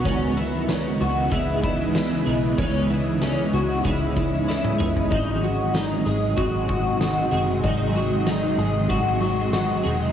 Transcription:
Already playing: B3
0.02 C#2 C#3 E3 G#3 C#4 D#5, kick, closed hi-hat
0.06 B3 D#4 G#4
0.36 E4, closed hi-hat
0.69 C#4, snare, closed hi-hat, tambourine
1.00 C#2 F#4, closed hi-hat
1.30 C#2 G#3 B3 D#4 E4, kick, closed hi-hat
1.34 G#4
1.63 E4, kick, closed hi-hat
1.95 E4, snare, closed hi-hat, tambourine
2.26 B1 G#3 B3 D#4 G#4, closed hi-hat
2.57 C#2 C#3 E3 G#3 C#4, kick, closed hi-hat
2.61 B3 D#4 G#4
2.90 E4, closed hi-hat
3.21 C#4, snare, closed hi-hat, tambourine
3.53 C#2 F#4, closed hi-hat
3.84 C#2 G#3 B3 D#4 E4, kick, closed hi-hat
3.88 G#4
4.16 E4, kick, closed hi-hat
4.48 E4, snare
4.65 high tom
4.78 F#1 B3 D#4 G#4, mid tom
4.82 G#3
4.96 floor tom
5.10 G#1 G#2 C3 D#3 F#3 D#4, kick, closed hi-hat
5.14 C4 F#4 G#4
5.43 F#4, closed hi-hat
5.74 D#4, snare, closed hi-hat, tambourine
6.05 G#1 G#4, closed hi-hat
6.36 G#1 F#3 C4 F#4, kick, closed hi-hat
6.41 G#4
6.68 F#4, kick, closed hi-hat
7.01 F#4, snare, closed hi-hat, tambourine
7.31 F#1 F#3 C4 F#4 G#4, closed hi-hat
7.63 G#1 G#2 D#3 F#3 D#4, kick, closed hi-hat
7.67 C4 F#4 G#4
7.95 F#4, closed hi-hat
8.26 D#4, snare, closed hi-hat, tambourine
8.58 G#1 G#4, closed hi-hat
8.89 G#1 F#3 C4 F#4, kick, closed hi-hat
8.94 G#4
9.21 F#4, closed hi-hat
9.53 F#4, snare, closed hi-hat, tambourine
9.83 E1 F#3 C4 F#4 G#4, closed hi-hat

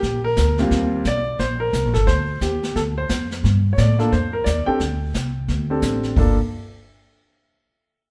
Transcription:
Already playing: G4
0.03 A#1, brush sweep, kick, snare
0.24 A#4
0.36 D2, kick, snare, hi-hat pedal
0.58 D#2 G3 A#3 C4 F4, snare
0.71 D#2, brush sweep, kick, snare
1.05 B1 D5, kick, snare, hi-hat pedal
1.39 A#1 C5, brush sweep, kick, snare
1.60 A#4
1.73 C2, kick, snare, hi-hat pedal
1.85 A#1
1.94 G1 A4, snare
2.07 D2 C5, brush sweep, kick, snare
2.41 D#2 G4, kick, snare, hi-hat pedal
2.63 snare
2.75 D2 A4, brush sweep, kick, snare
2.98 C5
3.09 F2, kick, snare, hi-hat pedal
3.31 snare
3.44 G2, brush sweep, kick, snare
3.73 C#5
3.78 A2 D5, kick, snare, hi-hat pedal
3.99 A#3 D4 F4 A4, snare
4.12 F2 C5, brush sweep, kick, snare
4.33 A#4
4.44 D#2 D5, kick, snare, hi-hat pedal
4.66 C4 D4 G4 A4 G5, muted upright bass stroke
4.80 D2, brush sweep, kick, snare
5.14 C2, kick, snare, hi-hat pedal
5.48 D2, brush sweep, kick, snare
5.70 C4 D4 G4 A4
5.82 A1, kick, snare, hi-hat pedal
6.03 snare
6.16 G1 A#3 D4 F4 A4, kick, open hi-hat

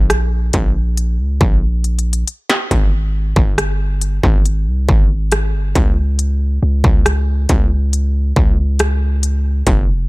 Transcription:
Already playing: A#1
0.10 cross-stick, closed hi-hat
0.53 A#1, kick, closed hi-hat
0.97 closed hi-hat
1.19 C#2
1.41 A#1, kick
1.84 closed hi-hat
1.99 closed hi-hat
2.13 closed hi-hat
2.28 closed hi-hat
2.50 snare
2.71 G#1, kick, closed hi-hat
3.36 G1, kick
3.58 cross-stick, closed hi-hat
4.01 closed hi-hat
4.23 G#1, kick
4.46 closed hi-hat
4.67 C2
4.89 G#1, kick
5.32 cross-stick, closed hi-hat
5.54 G1
5.75 C#2, kick, closed hi-hat
6.19 closed hi-hat
6.63 C#2
6.84 C#2, kick
7.06 cross-stick, closed hi-hat
7.49 C#2, kick, closed hi-hat
7.93 closed hi-hat
8.36 C#2, kick
8.79 cross-stick, closed hi-hat
9.23 closed hi-hat
9.67 F1, kick, closed hi-hat

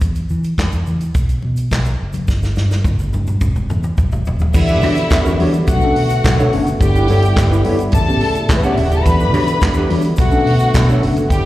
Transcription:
0.01 E2, kick, closed hi-hat, muted conga, shaker
0.15 closed hi-hat, shaker
0.29 E3, shaker
0.44 closed hi-hat, shaker
0.58 E2, kick, snare, clap, closed hi-hat, high conga, shaker
0.72 E2, closed hi-hat, shaker
0.86 E3, muted conga, low conga, shaker
1.01 closed hi-hat, shaker
1.14 B1, kick, closed hi-hat, shaker
1.29 closed hi-hat, shaker
1.42 B2, muted conga
1.56 closed hi-hat, shaker
1.71 B1, kick, snare, clap, closed hi-hat, high conga, shaker
1.85 closed hi-hat, shaker
2.01 F#1
2.13 closed hi-hat, high conga, shaker
2.28 G1, kick, snare, muted conga, shaker
2.42 snare, shaker
2.56 G2, snare, shaker
2.71 snare, shaker
2.84 G1, kick, high tom, high conga, shaker
2.99 G1, high tom, shaker
3.13 G2, high tom, low conga, shaker
3.27 mid tom, shaker
3.41 E1, kick, mid tom, low conga, shaker
3.56 mid tom, shaker
3.70 E2, mid tom, muted conga, low conga, shaker
3.83 mid tom, shaker
3.97 E1, kick, mid tom, high conga, shaker
4.12 floor tom, high conga, shaker
4.25 D#1, floor tom, shaker
4.39 floor tom, high conga, shaker
4.54 E2 D3 E3 G3 B3 E4 E5, muted clean electric guitar stroke, kick, crash, shaker
4.68 D4 G4 B4, shaker
4.81 E3 D4 F#4 G4, open hi-hat, shaker
4.86 C#5
4.95 muted clean electric guitar stroke, closed hi-hat, shaker
5.10 E2 D4 F#4, kick, snare, clap, closed hi-hat, shaker
5.25 E3 D4 G4 B4, shaker
5.39 E3 G3 D4 F#4 G4 C#5, open hi-hat
5.54 closed hi-hat, shaker
5.67 B1 B2 F#3 A3 F#4 F#5, muted clean electric guitar stroke, kick, closed hi-hat, shaker
5.81 C#4 D4 A4, muted clean electric guitar stroke, shaker
5.96 B2, open hi-hat
6.10 muted clean electric guitar stroke, closed hi-hat, shaker
6.24 B2 F#3, kick, snare, clap, closed hi-hat, shaker
6.39 D4 A4 C#5, shaker
6.53 F#1 C#4 D4 A4, muted clean electric guitar stroke, open hi-hat
6.67 D4 A4, muted clean electric guitar stroke, closed hi-hat, shaker
6.80 G1 G2 D3 G3 E4 G4 G5, muted clean electric guitar stroke, kick, closed hi-hat, shaker
6.95 E4 G4 B4, shaker
7.08 G2 E4 G4 A4 C#5, open hi-hat, shaker
7.22 muted clean electric guitar stroke, closed hi-hat, shaker
7.36 G1 E4 A4, muted clean electric guitar stroke, kick, snare, clap, closed hi-hat, shaker
7.51 G2 D3 E4 G4 B4, shaker
7.64 G2 B3 E4 G4 A4 C#5, open hi-hat
7.79 muted clean electric guitar stroke, closed hi-hat, shaker
7.92 A1 A2 C#3 E3 A3 A4 A5, muted clean electric guitar stroke, kick, closed hi-hat, shaker
8.08 B3 C#4 G4, muted clean electric guitar stroke, shaker
8.21 A2 C#4 G4, open hi-hat
8.35 muted clean electric guitar stroke, closed hi-hat, shaker
8.49 A2 E3, muted clean electric guitar stroke, kick, snare, clap, closed hi-hat, shaker
8.56 B3 B4
8.62 B3 C#4 G4 C#5 F#5, shaker
8.69 D4 D5
8.77 D#1 C#4 E4 G4 E5, open hi-hat
8.83 F#4 F#5
8.91 G4 G5, muted clean electric guitar stroke, closed hi-hat, shaker
8.96 A4 A5
9.04 E2 D3 E3 B3 B4 B5, muted clean electric guitar stroke, kick, closed hi-hat, shaker
9.20 D4 G4 B4, shaker
9.33 E3 D4 F#4 G4 C#5, open hi-hat, shaker
9.47 muted clean electric guitar stroke, closed hi-hat, shaker
9.61 E2 D4 F#4, muted clean electric guitar stroke, kick, snare, clap, closed hi-hat, shaker
9.74 E3 D4 G4 B4, shaker
9.89 E3 G3 D4 F#4 G4 C#5, open hi-hat
10.01 muted clean electric guitar stroke, closed hi-hat, shaker
10.16 B1 B2 D3 F#3 A3 F#4 F#5, muted clean electric guitar stroke, kick, closed hi-hat, shaker
10.31 C#4 D4 A4, muted clean electric guitar stroke, shaker
10.45 B2 D4 A4, open hi-hat
10.59 muted clean electric guitar stroke, closed hi-hat, shaker
10.73 B2 F#3, muted clean electric guitar stroke, kick, snare, clap, closed hi-hat, shaker
10.89 D4 A4 C#5, shaker
11.02 F#1 C#4 D4 A4, muted clean electric guitar stroke, open hi-hat
11.16 D4 A4, muted clean electric guitar stroke, closed hi-hat, shaker
11.29 G1 G2 D3 G3 E4 G4 G5, kick, closed hi-hat, shaker
11.33 muted clean electric guitar stroke

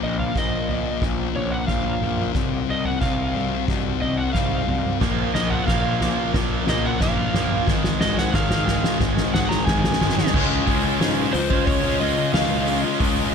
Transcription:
Already playing: C#3 A#3 F4
0.03 A#1 A#2 F3 A#3 D#5
0.19 F5, floor tom
0.35 A#1 A#2 F3 A#3 D#5, kick, snare
0.69 A#2 F3 A#3 A#4, floor tom
1.02 A#1 A#2 F3 A#3 F4, kick, snare, floor tom
1.35 A#1 A#2 F3 A#3 C#5, floor tom
1.52 F#5
1.67 A#1 A#2 F3 A#3 F4 F5, kick, snare, mid tom
2.01 A#1 A#2 F3 A#3 A#4, floor tom, mid tom
2.18 mid tom
2.34 C2 C3 D#3 G3 C4 F#4, kick, snare, floor tom
2.69 C2 C3 G3 C4 D#5
2.85 F#5, floor tom
3.01 C2 C3 G3 C4 F5, kick, snare
3.35 C3 G3 C4 F#4, floor tom
3.68 C2 C3 G3 C4 D#4, kick, snare, floor tom, mid tom
4.02 C2 C3 G3 C4 D#5, floor tom
4.17 F#5
4.33 C2 C3 G3 C4 D#4 F5, kick, snare, mid tom
4.68 C2 C3 G3 C4 F#4, floor tom, mid tom
4.85 mid tom
5.01 A#1 A#2 F3 A#3 C#4 A#4, kick, snare, floor tom, crash
5.33 A#1 A#2 F3 A#3 D#5, snare
5.50 F#5, floor tom
5.67 A#1 A#2 F3 A#3 F5, kick, snare
6.00 A#2 F3 A#3 F4, snare, floor tom
6.33 A#1 A#2 F3 A#3 C#4, kick, snare, floor tom
6.67 A#1 A#2 F3 A#3 D#5, snare, floor tom
6.86 F#5
7.00 A#1 A#2 F3 A#3 C#4 F5, kick, snare, mid tom
7.34 A#1 A#2 F3 A#3 F4, snare, floor tom, mid tom
7.51 mid tom
7.67 G#1 G#2 D#3 G#3 C4 G#4, kick, snare, floor tom
7.84 snare
8.00 G#1 G#2 D#3 G#3 D#5, snare
8.18 F#5, snare, floor tom
8.34 G#1 G#2 D#3 G#3 F5, kick, snare
8.50 snare
8.66 G#2 D#3 G#3 G#4, snare, floor tom
8.84 snare
8.99 G#1 G#2 D#3 G#3 D#4, kick, snare, floor tom, mid tom
9.17 snare
9.32 G#1 G#2 D#3 G#3 F#5, snare, floor tom
9.49 A#5, snare
9.65 G#1 G#2 D#3 G#3 D#4 G#5, kick, snare, mid tom
9.84 snare
9.93 snare
10.00 G#1 G#2 D#3 G#3 G#4, snare, floor tom, mid tom
10.09 snare
10.18 snare, mid tom
10.26 snare
10.33 C#2 C#3 G#3 C#4 F4 D#5, kick, crash
10.66 C#2 C#3 G#3 C#4 F4, kick, open hi-hat
10.84 G#3 C#4 F4
10.99 G#2 C#3 G#3 C#4 F4 G#4, snare, open hi-hat
11.18 G#3 C#4 F4
11.32 C#2 C#3 G#3 C#4 F4 C5, muted distorted electric guitar stroke, open hi-hat
11.50 G#3 C#4 F4, muted distorted electric guitar stroke, kick
11.67 C#2 G#4 C#5, kick, open hi-hat
11.83 G#3 C#4 F4
12.00 C#3 G#3 C#4 F4 D#5, open hi-hat
12.18 muted distorted electric guitar stroke
12.33 C#2 C#3 G#3 C#4 F4 D#5 F5, snare, open hi-hat
12.67 C#3 G#3 C#4 F4 G#4, open hi-hat
12.84 G#3 C#4 F4
13.00 C#2 C#3 G#3 C#4 F4, kick, open hi-hat

